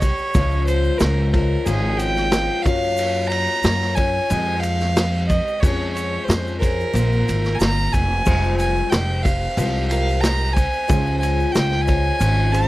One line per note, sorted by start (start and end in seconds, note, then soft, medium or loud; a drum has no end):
0.00 0.66 C#5 loud
0.00 kick medium
0.00 ride medium
0.00 shaker medium
0.04 0.36 G4 soft
0.18 shaker soft
0.34 0.88 C#2 loud
0.34 1.01 C#3 medium
0.34 1.66 F3 medium
0.34 0.99 G#3 medium
0.34 1.00 C#4 medium
0.34 1.01 F4 medium
0.34 kick loud
0.34 ride loud
0.34 shaker loud
0.51 shaker soft
0.67 1.00 C5 medium
0.67 ride medium
0.67 shaker medium
0.84 shaker soft
0.98 1.54 C#2 loud
0.98 1.34 G#3 medium
0.98 1.33 C#4 medium
0.98 1.33 F4 medium
0.98 1.33 A#4 medium
0.98 snare loud
0.98 ride loud
0.98 shaker loud
1.03 1.32 C5 medium
1.33 1.66 G#3 soft
1.33 1.66 C#4 medium
1.33 1.66 F4 medium
1.33 1.67 A#4 medium
1.33 1.66 C5 medium
1.33 kick medium
1.33 ride medium
1.65 2.47 G#1 loud
1.65 2.33 C#3 medium
1.65 2.66 F3 medium
1.65 2.31 G#3 medium
1.65 2.32 C#4 medium
1.65 2.33 F4 medium
1.65 1.99 G#4 medium
1.65 2.33 C5 medium
1.65 ride loud
1.65 shaker loud
1.97 2.64 G5 loud
1.97 ride medium
1.97 shaker medium
2.16 snare soft
2.16 shaker soft
2.32 2.66 G#3 medium
2.32 2.65 C#4 medium
2.32 2.65 F4 medium
2.32 2.66 C5 medium
2.32 snare loud
2.32 ride loud
2.32 shaker loud
2.62 3.46 F#2 loud
2.62 3.29 F5 loud
2.62 kick medium
2.62 ride medium
2.62 shaker medium
2.66 3.65 F#3 medium
2.66 3.64 A#3 medium
2.66 3.64 C#4 medium
2.66 3.65 F4 medium
2.66 3.65 C#5 medium
2.82 shaker soft
2.97 ride loud
2.97 shaker medium
3.14 shaker soft
3.28 3.97 A#5 loud
3.32 ride medium
3.46 shaker soft
3.63 4.18 F#2 loud
3.63 3.98 A#3 medium
3.63 3.97 C#4 medium
3.63 3.97 F4 medium
3.63 3.95 C#5 medium
3.63 snare loud
3.63 ride loud
3.63 shaker medium
3.81 snare soft
3.95 4.31 C#4 soft
3.95 4.31 F4 soft
3.95 4.30 C#5 medium
3.95 4.62 G#5 loud
3.95 kick medium
3.95 ride medium
3.95 shaker medium
4.30 5.38 F2 loud
4.30 5.00 F3 medium
4.30 4.95 G#3 medium
4.30 4.97 C4 medium
4.30 4.98 C5 medium
4.30 ride loud
4.30 shaker loud
4.60 5.26 F5 loud
4.60 ride medium
4.60 shaker medium
4.80 snare soft
4.80 shaker soft
4.96 5.62 G#3 medium
4.96 5.63 C4 medium
4.96 5.63 G4 medium
4.96 5.66 C5 medium
4.96 snare loud
4.96 ride loud
4.96 shaker loud
5.27 5.62 D#5 loud
5.27 kick medium
5.27 ride medium
5.27 shaker medium
5.48 shaker soft
5.60 6.16 F2 loud
5.60 8.25 F3 medium
5.60 6.27 G#3 medium
5.60 6.27 C#4 medium
5.60 6.29 G#4 medium
5.60 5.92 C#5 loud
5.60 kick loud
5.60 ride loud
5.60 shaker loud
5.93 6.26 C#5 medium
5.93 ride medium
5.97 shaker medium
6.24 6.61 G#3 medium
6.24 6.58 C5 medium
6.28 6.82 F2 loud
6.28 6.62 C#4 medium
6.28 6.62 G#4 medium
6.28 6.60 C5 medium
6.28 snare loud
6.28 ride loud
6.28 shaker loud
6.47 shaker soft
6.59 6.94 G#4 medium
6.59 7.56 A#4 loud
6.59 6.93 C5 medium
6.59 kick medium
6.59 ride medium
6.59 shaker medium
6.64 6.93 C#4 soft
6.80 shaker soft
6.93 7.21 A#1 loud
6.93 7.59 A#3 medium
6.93 7.61 C4 medium
6.93 7.61 F4 medium
6.93 7.62 C5 medium
6.93 ride loud
6.93 shaker loud
7.12 shaker soft
7.28 7.58 G#1 medium
7.28 ride medium
7.28 shaker medium
7.44 snare soft
7.44 shaker soft
7.55 7.60 G#5 medium
7.59 7.90 G1 medium
7.59 8.26 A#3 medium
7.59 8.26 C4 medium
7.59 8.92 F4 medium
7.59 8.27 C5 medium
7.59 7.95 A#5 loud
7.59 snare loud
7.59 ride loud
7.59 shaker loud
7.77 shaker soft
7.93 8.23 F1 medium
7.93 8.58 G#5 loud
7.93 kick medium
7.93 ride medium
7.93 shaker medium
8.25 8.80 F1 loud
8.25 8.95 F3 medium
8.25 9.09 G3 medium
8.25 8.91 G#3 medium
8.25 8.92 C4 medium
8.25 9.09 F4 medium
8.25 9.09 C5 medium
8.25 8.92 C5 medium
8.25 kick loud
8.25 crash loud
8.25 shaker medium
8.44 shaker soft
8.59 8.91 G#5 loud
8.59 ride medium
8.59 shaker medium
8.77 shaker soft
8.90 9.46 F1 loud
8.90 9.25 G#3 medium
8.90 9.25 C4 medium
8.90 9.25 G4 medium
8.90 9.24 C5 medium
8.90 9.24 G5 loud
8.90 snare loud
8.90 ride loud
8.90 shaker medium
9.23 9.57 G4 medium
9.23 9.57 C5 medium
9.23 9.87 F5 loud
9.23 kick medium
9.23 ride medium
9.23 shaker medium
9.27 9.57 C4 soft
9.57 10.64 C2 loud
9.57 10.27 F3 medium
9.57 10.21 G#3 medium
9.57 10.22 C4 medium
9.57 10.23 G4 medium
9.57 10.23 C5 medium
9.57 ride loud
9.57 shaker loud
9.88 10.53 F4 medium
9.88 10.53 G4 medium
9.88 10.22 F5 loud
9.88 ride medium
9.88 shaker medium
9.92 10.54 A#4 medium
10.08 shaker soft
10.21 10.56 G#3 medium
10.21 10.55 C4 medium
10.21 10.57 G4 medium
10.21 10.53 C5 medium
10.21 10.55 A#5 loud
10.21 snare loud
10.21 ride loud
10.21 shaker loud
10.53 10.88 C4 soft
10.53 10.88 C5 medium
10.53 11.19 G#5 loud
10.53 kick medium
10.53 ride medium
10.53 shaker medium
10.73 shaker soft
10.88 11.43 C#2 loud
10.88 11.55 C#3 medium
10.88 12.19 F3 medium
10.88 11.54 G#3 medium
10.88 11.55 C#4 medium
10.88 11.72 C#4 medium
10.88 11.56 F4 medium
10.88 11.72 F4 medium
10.88 11.73 G#4 medium
10.88 11.55 C5 medium
10.88 11.73 C5 medium
10.88 kick loud
10.88 ride loud
10.88 shaker medium
11.06 shaker soft
11.19 11.54 G#5 loud
11.19 ride medium
11.19 shaker medium
11.40 shaker soft
11.52 12.09 C#2 loud
11.52 11.88 G#3 medium
11.52 11.87 C#4 medium
11.52 11.84 G5 loud
11.52 snare loud
11.52 ride loud
11.52 shaker medium
11.57 11.86 F4 medium
11.57 11.86 C5 medium
11.72 snare soft
11.82 12.54 G#5 loud
11.87 12.18 G#3 soft
11.87 12.19 C#4 medium
11.87 12.19 F4 medium
11.87 12.20 C5 medium
11.87 kick medium
11.87 ride medium
11.87 shaker medium
12.19 12.68 G#1 loud
12.19 12.68 C#3 medium
12.19 12.68 F3 medium
12.19 12.68 G#3 medium
12.19 12.68 C#4 medium
12.19 12.68 F4 medium
12.19 12.68 C5 medium
12.19 ride loud
12.19 shaker loud
12.53 12.68 C#4 medium
12.53 12.68 F4 medium
12.53 12.68 G#4 medium
12.53 12.68 C5 medium
12.53 12.68 A#5 loud
12.53 ride medium
12.53 shaker medium